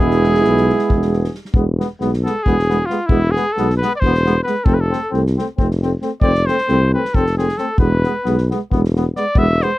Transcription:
Already playing: G#3 B3 G#4
0.00 E1 E4
0.11 snare
0.24 snare
0.34 snare
0.44 B1, snare
0.57 snare
0.69 snare
0.79 snare
0.90 E1, kick
1.02 snare
1.14 snare
1.24 snare
1.35 snare
1.45 snare
1.53 E1 G#3 B3, kick
1.79 G#3 B3, snare
2.00 B1 G#3 B3, snare
2.13 snare
2.24 G#3 B3 A4, snare
2.43 E1 G#3 B3 G#4, kick
2.59 snare
2.69 G#3 B3, snare
2.86 B3 F4
2.90 G#3, snare
3.06 E1 G#3 B3 E4, kick
3.31 G#4
3.36 G#3 B3, snare
3.53 A4
3.57 B1 G#3 B3, snare
3.70 snare
3.78 B4
3.82 G#3 B3, snare
3.96 D5
4.00 E1 G#3 C5, kick
4.05 B3
4.15 snare
4.26 G#3 B3, snare
4.43 B3 B4, snare
4.48 G#3
4.64 F1 A3 C4 A4, kick
4.74 B4
4.81 A4
4.90 A3 C4, snare
5.10 C2 A3 C4, snare
5.27 snare
5.37 A3 C4, snare
5.58 F1 A3 C4, kick
5.71 snare
5.82 A3 C4, snare
6.02 A3 C4, snare
6.21 F1 A3 C4 D5, kick
6.35 snare
6.46 A3 C4 C5, snare
6.58 snare
6.68 C2 A3 C4, snare
6.94 A3 C4 B4
7.05 snare
7.14 F1 A3 C4 A4, kick
7.26 snare
7.37 A3 C4 G#4, snare
7.49 snare
7.58 C4 A4, snare
7.62 A3
7.78 E1 G#3 B3 B4, kick
8.04 G#3 B3, snare
8.24 B1 G#3 B3, snare
8.38 snare
8.50 G#3 B3, snare
8.71 E1 G#3 B3, kick
8.85 snare
8.96 G#3 B3, snare
9.15 G#3 B3 D5, snare
9.35 E1 G#3 B3 E5, kick
9.61 G#3 B3 C5, snare

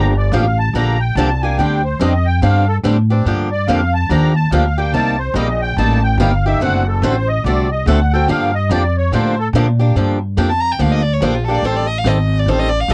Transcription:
Already playing: G1 D3 F3 A#3 D4 G4 A#5
0.17 D5
0.32 A1 D3 F3 A#3 D4 G4 F5
0.59 A5
0.74 A#1 D3 F3 A#3 D4 G4 A#5
1.00 G5
1.15 C2 D3 F3 A#3 D4 G4 A5
1.42 A#3 D4 G4 G#5
1.58 D2 D3 G3 C4 D4 G4 G5
1.84 C5
1.99 F2 D3 G3 C4 D4 G4 D#5
2.26 G5
2.42 G2 D3 G3 C4 D4 G4 F5
2.68 A4
2.83 A2 D3 G3 C4 D4 G4
3.10 C4 D4 G4
3.25 G2 D3 F3 A#3 D4 G4
3.52 D5
3.68 F2 D3 F3 A#3 D4 G4 F5
3.94 A5
4.09 D#2 D3 F3 A#3 D4 G4 A#5
4.36 A5
4.51 D2 D3 F3 A#3 D4 G4 F5
4.78 A#3 D4 G4 G5
4.92 C2 C3 G3 A#3 D#4 G4 A5
5.19 C5
5.34 A#1 C3 G3 A#3 D#4 G4 D#5
5.62 G5
5.77 A1 C3 G3 A#3 D#4 G4 A5
6.03 G5
6.18 G1 C3 G3 A#3 D#4 G4 F5
6.46 A#3 D#4 G4 E5
6.60 F#1 D3 A3 C4 F#4 A4 F#5
6.88 A4
7.02 A1 D3 A3 C4 F#4 A4 C5
7.28 D#5
7.44 C2 D3 A3 C4 F#4 A4 D5
7.71 D#5
7.86 D2 D3 A3 C4 F#4 A4 F#5
8.13 C4 F#4 A4 G5
8.28 G2 D3 F3 A#3 D4 G4 F5
8.55 D#5
8.69 F2 D3 F3 A#3 D4 G4 D5
8.97 C#5
9.12 A2 D3 F3 A#3 D4 G4 C5
9.39 A4
9.53 A#2 D3 F3 A#3 D4 G4
9.80 A#3 D4 G4
9.95 G2 D3 F3 A#3 D4 G4
10.37 F2 D3 F3 A#3 D4 G4
10.49 A5
10.60 A#5
10.72 G5
10.79 D2 D3 F3 A#3 D4 G4 F5
10.92 D#5
11.02 D5
11.13 C#5
11.20 A#1 D3 F3 A#3 D4 G4 C5
11.35 F4
11.44 G4 A4
11.49 A#3 D4
11.55 D5
11.62 A1 D#3 G3 C4 G4 A4 C5
11.76 D5
11.87 D#5
11.98 F5
12.04 G#1 D#3 G3 C4 G4 A4 D#5
12.39 D5
12.46 A1 D#3 G3 C4 G4 A4 C5
12.59 D#5
12.69 D5
12.80 F5
12.88 A#1 D#3 G3 C4 G4 A4

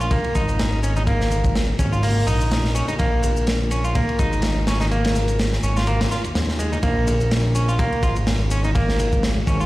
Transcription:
Already playing: A#1
0.01 F4, shaker
0.11 A#3, kick, ride, high conga, shaker
0.24 ride
0.35 G#1 D#4, kick, ride, shaker
0.48 ride, high conga, shaker
0.59 snare, ride, low conga, shaker
0.83 C#4, ride, shaker
0.96 D#4, high conga, shaker
1.07 A#3, kick, ride, shaker
1.21 snare
1.30 ride, high conga, shaker
1.45 kick, shaker
1.55 snare, ride, shaker
1.68 high conga
1.79 G#1 C#4, kick, ride, shaker
1.92 F4, shaker
2.02 A#3, open hi-hat, high conga, shaker
2.27 A#1 D#4, ride, shaker
2.40 high conga, shaker
2.51 snare, ride, low conga, shaker
2.65 snare
2.75 C#4, ride, shaker
2.88 D#4, ride, high conga, shaker
2.99 A#1 A#3, kick, ride, shaker
3.22 ride, high conga, shaker
3.37 shaker
3.47 snare, ride, shaker
3.60 high conga
3.71 C#4, ride, shaker
3.84 F4, shaker
3.95 A#3, kick, ride, high conga, shaker
4.09 ride
4.19 G#1 D#4, kick, ride, shaker
4.33 ride, high conga, shaker
4.42 snare, ride, low conga, shaker
4.67 C#4, snare, ride, shaker
4.80 D#4, snare, high conga, shaker
4.91 A#3, ride, shaker
5.05 snare, ride
5.15 snare, high conga, shaker
5.28 ride, shaker
5.39 snare, ride, shaker
5.53 snare, high conga
5.63 G#1 C#4, ride, shaker
5.77 F4, snare, shaker
5.87 A#3, ride, high conga, shaker
6.01 snare, ride
6.11 F4, snare, shaker
6.24 D#2, ride, high conga, shaker
6.35 D#2, snare, ride, low conga, shaker
6.49 snare
6.59 G#3, ride, shaker
6.72 D#4, ride, high conga, shaker
6.83 A#1 A#3, kick, ride, shaker
7.07 ride, high conga, shaker
7.21 shaker
7.31 snare, ride, shaker
7.46 high conga
7.55 C#4, ride, shaker
7.69 F4, shaker
7.79 A#3, kick, ride, high conga, shaker
7.92 ride
8.03 G#1 F4, kick, ride, shaker
8.16 ride, high conga, shaker
8.27 snare, ride, low conga, shaker
8.51 C#4, ride, shaker
8.64 D#4, high conga, shaker
8.75 A#3, kick, ride, shaker
8.89 snare
8.99 ride, high conga, shaker
9.13 kick, shaker
9.23 snare, ride, shaker
9.36 high conga
9.47 G#1 C#4, kick, ride, shaker
9.60 F4, shaker

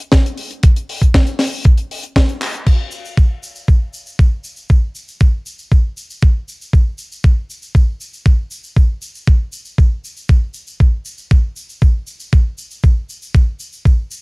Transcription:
0.12 kick, snare, closed hi-hat
0.26 closed hi-hat
0.37 open hi-hat
0.51 closed hi-hat
0.63 kick, closed hi-hat
0.76 closed hi-hat
0.89 open hi-hat
1.02 kick, closed hi-hat
1.14 kick, snare, closed hi-hat
1.27 closed hi-hat
1.39 snare, open hi-hat
1.52 open hi-hat
1.65 kick, closed hi-hat
1.78 closed hi-hat
1.91 open hi-hat
2.04 closed hi-hat
2.16 kick, snare, closed hi-hat
2.29 closed hi-hat
2.42 clap, open hi-hat
2.54 closed hi-hat
2.66 kick, crash, shaker
2.91 shaker
3.05 shaker
3.17 kick, shaker
3.43 shaker
3.56 shaker
3.68 kick, shaker
3.94 shaker
4.06 shaker
4.19 kick, shaker
4.44 shaker
4.56 shaker
4.70 kick, shaker
4.95 shaker
5.08 shaker
5.20 kick, shaker
5.46 shaker
5.59 shaker
5.72 kick, shaker
5.97 shaker
6.10 shaker
6.22 kick, shaker
6.48 shaker
6.61 shaker
6.73 kick, shaker
6.98 shaker
7.12 shaker
7.24 kick, shaker
7.50 shaker
7.62 shaker
7.75 kick, shaker
8.01 shaker
8.13 shaker
8.26 kick, shaker
8.51 shaker
8.64 shaker
8.77 kick, shaker
9.02 shaker
9.15 shaker
9.27 kick, shaker
9.52 shaker
9.65 shaker
9.78 kick, shaker
10.05 shaker
10.17 shaker
10.29 kick, shaker
10.54 shaker
10.67 shaker
10.80 kick, shaker
11.05 shaker
11.18 shaker
11.31 kick, shaker
11.56 shaker
11.69 shaker
11.82 kick, shaker
12.07 shaker
12.20 shaker
12.33 kick, shaker
12.58 shaker
12.71 shaker
12.83 kick, shaker
13.09 shaker
13.22 shaker
13.35 kick, shaker
13.60 shaker
13.72 shaker
13.85 kick, shaker
14.11 shaker

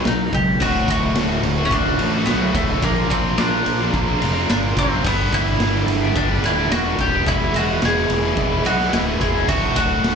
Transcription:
0.05 B1 B2 F#3 D#4, snare, ride
0.33 C#2 B2 F#3 G4, kick, ride
0.60 D1 D2 A2 D3 A3 F#4, kick, crash
0.88 D1 A2 D3 A3 F#4, kick, ride
1.03 D3 A3 F#4
1.15 D1 D2 A2 D3 A3 F#4, snare, ride
1.29 D3 A3 F#4, snare
1.43 D1 A2 D3 A3 F#4, muted overdriven electric guitar stroke, snare, ride
1.58 D3 A3 F#4
1.65 C#4
1.71 D1 D4, kick, ride
1.85 D3 A3 F#4
1.98 A1 A2 D3 A3 F#4, ride
2.13 D3 A3 F#4
2.25 B1 D2 A2 D3 A3 B3 F#4, snare, ride
2.40 D3 A3 F#4
2.53 D1 A2 D3 A3 F#4, kick, ride
2.67 D3 A3 F#4
2.81 A#1 A#2 F3 A#3 D4 F4 A#4, kick, ride
3.09 A#1 A#3 C4 D4 F4 A#4, kick, ride
3.23 A#3 D4 F4 A#4
3.37 A#1 A#2 F3 A#3 D4 F4 A#4, snare, ride
3.52 A#3 D4 F4 A#4
3.65 A#1 A#3 D4 F4 A#4, muted overdriven electric guitar stroke, ride
3.80 A#3 D4 F4 A#4
3.94 A#1, kick, ride
4.06 A#3 D4 F4 A#4
4.19 F1 A#3 D4 F4 A#4, ride
4.34 A#3 D4 F4 A#4
4.49 G1 A#2 F3 A#3 D4 F4 A#4, snare, ride
4.61 A#3 D4 F4 A#4
4.76 F#1 A#3 C4 D4 F4 A#4, kick, ride
4.89 A#3 D4 F4 A#4
5.03 G1 G2 D3 G3 B3 D4 G4, kick, crash
5.31 G1 G3 B3 D4 E4 G4, kick, ride
5.45 G3 B3 D4 G4
5.59 G1 G2 D3 G3 B3 D4 G4, snare, ride
5.73 G3 B3 D4 G4, snare
5.87 G1 G3 B3 D4 G4, muted overdriven electric guitar stroke, snare, ride
6.02 G3 B3 D4 G4
6.15 G1 D4, kick, ride
6.28 G3 B3 D4 G4
6.42 D1 G3 B3 D4 E4 G4, ride
6.56 G3 B3 D4 G4
6.70 E1 G2 D3 G3 B3 D4 F#4 G4, snare, ride
6.84 G3 B3 D4 G4
6.99 D#1 G3 B3 D4 G4, kick, ride
7.12 G3 B3 D4 G4
7.26 E1 E2 B2 E3 G#3 B3 E4, kick, ride
7.54 E1 E3 G#3 B3 E4 F#4, ride
7.69 E3 G#3 B3 E4
7.82 E1 E2 B2 E3 G#3 B3 E4 G#4, snare, ride
7.96 E3 G#3 B3 E4, snare
8.10 E1 E3 G#3 B3 E4, muted overdriven electric guitar stroke, ride
8.23 E3 G#3 B3 E4
8.37 E1, kick, ride
8.52 E3 G#3 B3 E4
8.65 B1 E3 G#3 B3 E4 F#4, ride
8.79 E3 G#3 B3 E4, snare
8.93 D1 E2 B2 E3 G#3 B3 E4, snare, ride
9.06 E3 G#3 B3 E4
9.20 E1 E3 G#3 B3 E4 G#4, kick, ride
9.35 E3 G#3 B3 E4
9.48 D1 D2 A2 D3 A3 F#4, kick, crash
9.75 D1 A2 D3 A3 F#4, kick, ride
9.89 D3 A3 F#4
10.03 D1 D2 A2 D3 A3 F#4, snare, ride

